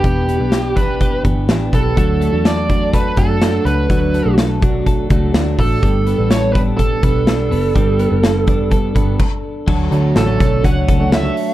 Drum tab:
CC |--------|--------|--------|--------|
HH |xxxxxxxx|xxxxxxxx|xxxxxxxo|xxxxxxxo|
SD |--o---o-|--o---o-|--o---o-|--o---o-|
BD |o--ooo-o|o--ooo--|o--ooo-o|o--ooo--|

CC |------x-|x-------|
HH |xxxxxx--|-xxxxxxo|
SD |--o-----|--oo--o-|
BD |o--oooo-|o--ooo--|